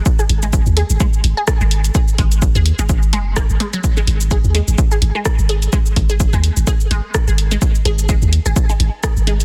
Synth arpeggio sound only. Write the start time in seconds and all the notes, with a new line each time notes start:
0.19 G#4
0.43 G#3
0.77 G#4
1.00 G#3
1.37 G#4
1.61 G#3
1.95 G#4
2.18 G#3
2.55 G#4
2.79 G#3
3.13 G#3
3.37 A#3
3.60 G#3
3.73 F#3
3.97 G#3
4.31 G#4
4.55 G#3
4.91 G#4
5.15 G#3
5.49 G#4
5.73 G#3
6.10 G#4
6.33 G#3
6.67 G#4
6.91 G#3
7.28 G#4
7.51 G#3
7.85 G#4
8.09 G#3
8.46 G#4
8.69 G#3
9.03 G#4
9.27 G#3